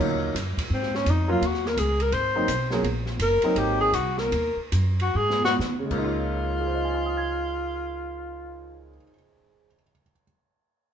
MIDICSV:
0, 0, Header, 1, 6, 480
1, 0, Start_track
1, 0, Time_signature, 4, 2, 24, 8
1, 0, Key_signature, -5, "major"
1, 0, Tempo, 356506
1, 4795, Tempo, 379987
1, 5755, Tempo, 414365
1, 6715, Tempo, 470958
1, 7675, Tempo, 507614
1, 12255, End_track
2, 0, Start_track
2, 0, Title_t, "Alto saxophone"
2, 0, Program_c, 0, 65
2, 993, Note_on_c, 0, 60, 71
2, 1284, Note_on_c, 0, 61, 85
2, 1304, Note_off_c, 0, 60, 0
2, 1481, Note_on_c, 0, 63, 68
2, 1501, Note_off_c, 0, 61, 0
2, 1760, Note_off_c, 0, 63, 0
2, 1775, Note_on_c, 0, 65, 81
2, 1961, Note_on_c, 0, 66, 70
2, 1981, Note_off_c, 0, 65, 0
2, 2251, Note_on_c, 0, 70, 89
2, 2272, Note_off_c, 0, 66, 0
2, 2406, Note_on_c, 0, 68, 81
2, 2426, Note_off_c, 0, 70, 0
2, 2715, Note_on_c, 0, 70, 85
2, 2735, Note_off_c, 0, 68, 0
2, 2868, Note_on_c, 0, 72, 88
2, 2889, Note_off_c, 0, 70, 0
2, 3825, Note_off_c, 0, 72, 0
2, 4336, Note_on_c, 0, 70, 86
2, 4814, Note_on_c, 0, 67, 80
2, 4833, Note_off_c, 0, 70, 0
2, 5096, Note_off_c, 0, 67, 0
2, 5104, Note_on_c, 0, 68, 102
2, 5282, Note_on_c, 0, 66, 82
2, 5301, Note_off_c, 0, 68, 0
2, 5580, Note_on_c, 0, 70, 78
2, 5599, Note_off_c, 0, 66, 0
2, 6052, Note_off_c, 0, 70, 0
2, 6558, Note_on_c, 0, 66, 77
2, 6733, Note_on_c, 0, 68, 88
2, 6748, Note_off_c, 0, 66, 0
2, 7014, Note_off_c, 0, 68, 0
2, 7019, Note_on_c, 0, 66, 82
2, 7119, Note_off_c, 0, 66, 0
2, 7503, Note_on_c, 0, 65, 82
2, 10411, Note_off_c, 0, 65, 0
2, 12255, End_track
3, 0, Start_track
3, 0, Title_t, "Grand piano"
3, 0, Program_c, 1, 0
3, 0, Note_on_c, 1, 54, 65
3, 0, Note_on_c, 1, 58, 56
3, 0, Note_on_c, 1, 61, 60
3, 0, Note_on_c, 1, 63, 58
3, 0, Note_on_c, 1, 65, 65
3, 441, Note_off_c, 1, 54, 0
3, 442, Note_off_c, 1, 61, 0
3, 444, Note_off_c, 1, 58, 0
3, 446, Note_off_c, 1, 63, 0
3, 449, Note_off_c, 1, 65, 0
3, 1724, Note_on_c, 1, 54, 65
3, 1728, Note_on_c, 1, 58, 60
3, 1733, Note_on_c, 1, 61, 59
3, 1740, Note_on_c, 1, 65, 71
3, 1887, Note_off_c, 1, 54, 0
3, 1889, Note_off_c, 1, 58, 0
3, 1891, Note_off_c, 1, 61, 0
3, 1895, Note_off_c, 1, 65, 0
3, 3168, Note_on_c, 1, 54, 55
3, 3171, Note_on_c, 1, 58, 55
3, 3181, Note_on_c, 1, 60, 51
3, 3183, Note_on_c, 1, 63, 61
3, 3327, Note_off_c, 1, 54, 0
3, 3328, Note_off_c, 1, 58, 0
3, 3333, Note_off_c, 1, 60, 0
3, 3334, Note_off_c, 1, 63, 0
3, 3656, Note_on_c, 1, 58, 54
3, 3664, Note_on_c, 1, 54, 62
3, 3671, Note_on_c, 1, 61, 59
3, 3674, Note_on_c, 1, 68, 66
3, 3810, Note_off_c, 1, 58, 0
3, 3814, Note_off_c, 1, 54, 0
3, 3817, Note_off_c, 1, 61, 0
3, 3819, Note_off_c, 1, 68, 0
3, 4623, Note_on_c, 1, 54, 59
3, 4632, Note_on_c, 1, 58, 54
3, 4636, Note_on_c, 1, 60, 57
3, 4641, Note_on_c, 1, 63, 67
3, 5235, Note_off_c, 1, 54, 0
3, 5239, Note_off_c, 1, 58, 0
3, 5241, Note_off_c, 1, 60, 0
3, 5243, Note_off_c, 1, 63, 0
3, 7370, Note_on_c, 1, 49, 62
3, 7436, Note_on_c, 1, 56, 52
3, 7494, Note_on_c, 1, 58, 58
3, 7559, Note_on_c, 1, 63, 56
3, 7624, Note_on_c, 1, 65, 69
3, 8156, Note_on_c, 1, 68, 42
3, 8225, Note_on_c, 1, 72, 41
3, 8298, Note_on_c, 1, 75, 39
3, 8390, Note_on_c, 1, 80, 36
3, 8483, Note_on_c, 1, 84, 37
3, 8589, Note_on_c, 1, 87, 33
3, 8696, Note_on_c, 1, 92, 32
3, 10325, Note_off_c, 1, 49, 0
3, 10386, Note_off_c, 1, 56, 0
3, 10440, Note_off_c, 1, 58, 0
3, 10500, Note_off_c, 1, 63, 0
3, 10561, Note_off_c, 1, 65, 0
3, 11051, Note_off_c, 1, 68, 0
3, 11121, Note_off_c, 1, 72, 0
3, 11193, Note_off_c, 1, 75, 0
3, 11285, Note_off_c, 1, 80, 0
3, 11379, Note_off_c, 1, 84, 0
3, 11484, Note_off_c, 1, 87, 0
3, 11592, Note_off_c, 1, 92, 0
3, 12255, End_track
4, 0, Start_track
4, 0, Title_t, "Upright bass"
4, 0, Program_c, 2, 32
4, 0, Note_on_c, 2, 39, 80
4, 461, Note_off_c, 2, 39, 0
4, 468, Note_on_c, 2, 42, 81
4, 753, Note_off_c, 2, 42, 0
4, 946, Note_on_c, 2, 44, 68
4, 1413, Note_off_c, 2, 44, 0
4, 1428, Note_on_c, 2, 41, 82
4, 1894, Note_off_c, 2, 41, 0
4, 1906, Note_on_c, 2, 39, 80
4, 2372, Note_off_c, 2, 39, 0
4, 2382, Note_on_c, 2, 37, 91
4, 2850, Note_off_c, 2, 37, 0
4, 2857, Note_on_c, 2, 32, 71
4, 3326, Note_off_c, 2, 32, 0
4, 3340, Note_on_c, 2, 35, 80
4, 3807, Note_off_c, 2, 35, 0
4, 3816, Note_on_c, 2, 34, 81
4, 4287, Note_off_c, 2, 34, 0
4, 4300, Note_on_c, 2, 30, 89
4, 4590, Note_off_c, 2, 30, 0
4, 4783, Note_on_c, 2, 32, 71
4, 5246, Note_off_c, 2, 32, 0
4, 5262, Note_on_c, 2, 36, 79
4, 5738, Note_off_c, 2, 36, 0
4, 5749, Note_on_c, 2, 39, 76
4, 6026, Note_off_c, 2, 39, 0
4, 6219, Note_on_c, 2, 42, 83
4, 6699, Note_off_c, 2, 42, 0
4, 6714, Note_on_c, 2, 44, 71
4, 7160, Note_off_c, 2, 44, 0
4, 7166, Note_on_c, 2, 51, 71
4, 7461, Note_off_c, 2, 51, 0
4, 7485, Note_on_c, 2, 37, 72
4, 10395, Note_off_c, 2, 37, 0
4, 12255, End_track
5, 0, Start_track
5, 0, Title_t, "Muted upright bass strokes"
5, 775, Note_on_c, 9, 29, 39
5, 909, Note_off_c, 9, 29, 0
5, 4609, Note_on_c, 9, 29, 38
5, 4744, Note_off_c, 9, 29, 0
5, 6037, Note_on_c, 9, 29, 37
5, 6153, Note_off_c, 9, 29, 0
5, 12255, End_track
6, 0, Start_track
6, 0, Title_t, "Drums"
6, 0, Note_on_c, 9, 36, 62
6, 6, Note_on_c, 9, 49, 65
6, 129, Note_off_c, 9, 36, 0
6, 141, Note_off_c, 9, 49, 0
6, 470, Note_on_c, 9, 36, 18
6, 481, Note_on_c, 9, 44, 50
6, 481, Note_on_c, 9, 51, 67
6, 605, Note_off_c, 9, 36, 0
6, 616, Note_off_c, 9, 44, 0
6, 616, Note_off_c, 9, 51, 0
6, 775, Note_on_c, 9, 36, 53
6, 788, Note_on_c, 9, 51, 68
6, 910, Note_off_c, 9, 36, 0
6, 923, Note_off_c, 9, 51, 0
6, 945, Note_on_c, 9, 36, 24
6, 1080, Note_off_c, 9, 36, 0
6, 1112, Note_on_c, 9, 38, 27
6, 1247, Note_off_c, 9, 38, 0
6, 1272, Note_on_c, 9, 38, 40
6, 1407, Note_off_c, 9, 38, 0
6, 1427, Note_on_c, 9, 36, 21
6, 1431, Note_on_c, 9, 44, 48
6, 1431, Note_on_c, 9, 51, 58
6, 1562, Note_off_c, 9, 36, 0
6, 1565, Note_off_c, 9, 44, 0
6, 1565, Note_off_c, 9, 51, 0
6, 1908, Note_on_c, 9, 36, 20
6, 1919, Note_on_c, 9, 51, 58
6, 2043, Note_off_c, 9, 36, 0
6, 2054, Note_off_c, 9, 51, 0
6, 2070, Note_on_c, 9, 38, 26
6, 2205, Note_off_c, 9, 38, 0
6, 2230, Note_on_c, 9, 38, 42
6, 2364, Note_off_c, 9, 38, 0
6, 2384, Note_on_c, 9, 36, 19
6, 2389, Note_on_c, 9, 44, 61
6, 2389, Note_on_c, 9, 51, 67
6, 2518, Note_off_c, 9, 36, 0
6, 2524, Note_off_c, 9, 44, 0
6, 2524, Note_off_c, 9, 51, 0
6, 2691, Note_on_c, 9, 51, 44
6, 2826, Note_off_c, 9, 51, 0
6, 2858, Note_on_c, 9, 51, 55
6, 2862, Note_on_c, 9, 36, 21
6, 2993, Note_off_c, 9, 51, 0
6, 2997, Note_off_c, 9, 36, 0
6, 3339, Note_on_c, 9, 44, 61
6, 3339, Note_on_c, 9, 51, 64
6, 3341, Note_on_c, 9, 36, 20
6, 3473, Note_off_c, 9, 44, 0
6, 3473, Note_off_c, 9, 51, 0
6, 3476, Note_off_c, 9, 36, 0
6, 3642, Note_on_c, 9, 38, 46
6, 3776, Note_off_c, 9, 38, 0
6, 3820, Note_on_c, 9, 36, 19
6, 3828, Note_on_c, 9, 51, 49
6, 3954, Note_off_c, 9, 36, 0
6, 3963, Note_off_c, 9, 51, 0
6, 4120, Note_on_c, 9, 38, 35
6, 4254, Note_off_c, 9, 38, 0
6, 4298, Note_on_c, 9, 36, 23
6, 4302, Note_on_c, 9, 44, 57
6, 4302, Note_on_c, 9, 51, 73
6, 4433, Note_off_c, 9, 36, 0
6, 4436, Note_off_c, 9, 44, 0
6, 4436, Note_off_c, 9, 51, 0
6, 4602, Note_on_c, 9, 51, 44
6, 4737, Note_off_c, 9, 51, 0
6, 4790, Note_on_c, 9, 36, 17
6, 4794, Note_on_c, 9, 51, 56
6, 4917, Note_off_c, 9, 36, 0
6, 4920, Note_off_c, 9, 51, 0
6, 5262, Note_on_c, 9, 36, 24
6, 5267, Note_on_c, 9, 44, 57
6, 5267, Note_on_c, 9, 51, 64
6, 5389, Note_off_c, 9, 36, 0
6, 5393, Note_off_c, 9, 44, 0
6, 5393, Note_off_c, 9, 51, 0
6, 5572, Note_on_c, 9, 38, 43
6, 5698, Note_off_c, 9, 38, 0
6, 5752, Note_on_c, 9, 36, 16
6, 5754, Note_on_c, 9, 51, 55
6, 5868, Note_off_c, 9, 36, 0
6, 5870, Note_off_c, 9, 51, 0
6, 6218, Note_on_c, 9, 36, 18
6, 6218, Note_on_c, 9, 44, 52
6, 6218, Note_on_c, 9, 51, 60
6, 6333, Note_off_c, 9, 44, 0
6, 6333, Note_off_c, 9, 51, 0
6, 6334, Note_off_c, 9, 36, 0
6, 6537, Note_on_c, 9, 51, 44
6, 6653, Note_off_c, 9, 51, 0
6, 6870, Note_on_c, 9, 38, 49
6, 6972, Note_off_c, 9, 38, 0
6, 7016, Note_on_c, 9, 38, 72
6, 7118, Note_off_c, 9, 38, 0
6, 7176, Note_on_c, 9, 38, 47
6, 7178, Note_on_c, 9, 44, 45
6, 7278, Note_off_c, 9, 38, 0
6, 7280, Note_off_c, 9, 44, 0
6, 7486, Note_on_c, 9, 36, 50
6, 7487, Note_on_c, 9, 49, 53
6, 7588, Note_off_c, 9, 36, 0
6, 7589, Note_off_c, 9, 49, 0
6, 12255, End_track
0, 0, End_of_file